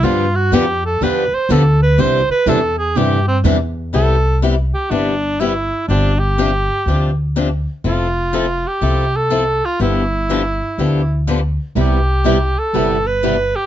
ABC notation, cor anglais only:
X:1
M:4/4
L:1/8
Q:"Swing" 1/4=123
K:C
V:1 name="Cor anglais"
F ^F G A B c A B | c B A _A G C z2 | A2 z G D2 E2 | D G4 z3 |
F3 G2 A2 F | E6 z2 | G3 A2 B2 G |]